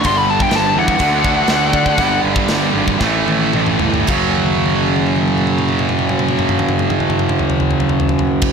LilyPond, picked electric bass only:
\new Staff \with { instrumentName = "Picked electric bass" } { \clef bass \time 4/4 \key fis \phrygian \tempo 4 = 108 g,,4 g,,8 e,8 d,4 d,8 d8 | g,,8 g,,8 g,,8 gis,,8 a,,8 a,,8 a,,8 g,,8 | fis,,1~ | fis,,1 | }